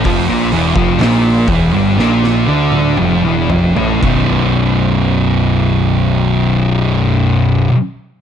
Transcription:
<<
  \new Staff \with { instrumentName = "Distorted electric guitar" } { \clef bass \time 4/4 \key b \minor \tempo 4 = 56 <eis, eis>16 <ais, ais>16 <e, e>16 <eis, eis>16 <ais, ais>8 <e, e>16 <g, g>16 <ais, ais>8 <d d'>8 <eis, eis>16 <e, e>16 <eis, eis>16 <a, a>16 | <b,, fis, b,>1 | }
  \new Staff \with { instrumentName = "Distorted electric guitar" } { \clef bass \time 4/4 \key b \minor <eis, eis>16 <ais, ais>16 <e, e>16 <eis, eis>16 <ais, ais>8 <e, e>16 <g, g>16 <ais, ais>8 <d d'>8 <eis, eis>16 <e, e>16 <eis, eis>16 <a, a>16 | <b,, fis, b,>1 | }
  \new Staff \with { instrumentName = "Picked electric bass" } { \clef bass \time 4/4 \key b \minor eis,,16 ais,,16 e,,16 eis,,16 ais,,8 e,,16 g,,16 ais,,8 d,8 eis,,16 e,,16 eis,,16 a,,16 | b,,,1 | }
  \new DrumStaff \with { instrumentName = "Drums" } \drummode { \time 4/4 <hho bd>8 hho16 bd16 <hho sn>8 <hho bd>8 sn16 sn8 tommh16 toml8 tomfh16 tomfh16 | <cymc bd>4 r4 r4 r4 | }
>>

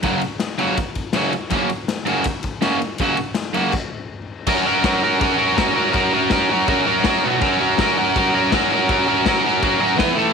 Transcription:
<<
  \new Staff \with { instrumentName = "Overdriven electric guitar" } { \time 4/4 \key fis \mixolydian \tempo 4 = 163 <fis, cis fis ais cis' fis'>8 r4 <fis, cis fis ais cis' fis'>8 r4 <fis, cis fis ais cis' fis'>8 r8 | <fis, cis fis ais cis' fis'>8 r4 <fis, cis fis ais cis' fis'>8 r4 <fis, cis fis ais cis' fis'>8 r8 | <fis, cis fis ais cis' fis'>8 r4 <fis, cis fis ais cis' fis'>8 r2 | <fis cis' fis' ais'>8 <fis cis' fis' ais'>8 <fis cis' fis' ais'>8 <fis cis' fis' ais'>8 <fis cis' fis' ais'>8 <fis cis' fis' ais'>8 <fis cis' fis' ais'>8 <fis cis' fis' ais'>8 |
<fis cis' fis' ais'>8 <fis cis' fis' ais'>8 <fis cis' fis' ais'>8 <fis cis' fis' ais'>8 <fis cis' fis' ais'>8 <fis cis' fis' ais'>8 <fis cis' fis' ais'>8 <b, fis b fis'>8 | <fis cis' fis' ais'>8 <fis cis' fis' ais'>8 <fis cis' fis' ais'>8 <fis cis' fis' ais'>8 <fis cis' fis' ais'>8 <fis cis' fis' ais'>8 <fis cis' fis' ais'>8 <fis cis' fis' ais'>8 | <fis cis' fis' ais'>8 <fis cis' fis' ais'>8 <fis cis' fis' ais'>8 <fis cis' fis' ais'>8 <fis cis' fis' ais'>8 <fis cis' fis' ais'>8 <e b e' b'>8 <a, e a e' a'>8 | }
  \new DrumStaff \with { instrumentName = "Drums" } \drummode { \time 4/4 <bd cymr>8 cymr8 <cymr sn>8 cymr8 <bd cymr>8 <bd cymr>8 <cymr sn>8 cymr8 | <bd cymr>8 cymr8 <cymr sn>8 cymr8 <bd cymr>8 <bd cymr>8 <cymr sn>8 cymr8 | <bd cymr>8 cymr8 <cymr sn>8 cymr8 <cymc bd>4 r4 | <cymc bd>4 <cymc bd sn>4 <cymc bd>4 <cymc bd sn>4 |
<cymc bd>4 <cymc bd sn>4 <cymc bd>4 <cymc bd sn>4 | <cymc bd>4 <cymc bd sn>4 <cymc bd>4 <cymc bd sn>4 | <cymc bd>4 <cymc bd sn>4 <cymc bd>4 <cymc bd sn>4 | }
>>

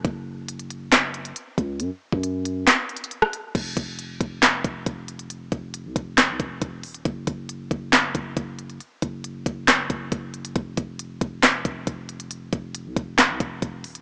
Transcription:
<<
  \new Staff \with { instrumentName = "808-style bass" } { \clef bass \time 4/4 \key ges \lydian \tempo 4 = 137 ges,,2. r8 des,8 | ges,16 r8 ges,4~ ges,16 r2 | f,,8 f,,4 f,,4 f,,8 f,,4~ | f,,8 f,,8. c,16 f,,8. c,16 f,,8 f,,8 ees,,8 |
ges,,8 ges,,4 ges,,4 ges,,8 ges,,4 | r8 ges,,4 ges,,4 ges,,8 ges,,4 | f,,8 f,,4 f,,4 f,,8 f,,4~ | f,,8 f,,8. c,16 f,,8. c,16 f,,8 f,,8 ees,,8 | }
  \new DrumStaff \with { instrumentName = "Drums" } \drummode { \time 4/4 <hh bd>4 hh16 hh16 hh8 <hc hh sn>8 hh16 hh16 hh8 <hh bd>8 | hh8. bd16 hh8 hh8 \tuplet 3/2 { <hc hh sn>16 r16 r16 hh16 hh16 hh16 } hh16 ss16 hh8 | <cymc hh bd>8 <hh bd>8 hh8 <hh bd>8 <hc hh sn>8 <hh bd>8 <hh bd>8 hh16 hh16 | hh8 <hh bd>8 hh8 <hh bd>8 <hc hh sn>8 <hh bd>8 <hh bd>8 <hh hho>16 hh16 |
<hh bd>8 <hh bd>8 hh8 <hh bd>8 <hc hh sn>8 <hh bd>8 <hh bd>8 hh16 hh16 | hh8 <hh bd>8 hh8 <hh bd>8 <hc hh sn>8 <hh bd>8 <hh bd>8 hh16 hh16 | <hh bd>8 <hh bd>8 hh8 <hh bd>8 <hc hh sn>8 <hh bd>8 <hh bd>8 hh16 hh16 | hh8 <hh bd>8 hh8 <hh bd>8 <hc hh sn>8 <hh bd>8 <hh bd>8 <hh hho>16 hh16 | }
>>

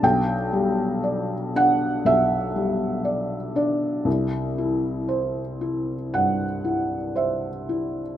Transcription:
\new Staff \with { instrumentName = "Felt piano" } { \time 4/4 \key g \major \tempo 4 = 59 << { g''4. fis''8 e''4. d''8 | r2 fis''4 e''4 | } \\ { <b,, d'>8 g8 d''8 d'8 b,,8 g8 d''8 d'8 | c,8 e'8 c''8 e'8 g,8 e'8 c''8 e'8 | } >> }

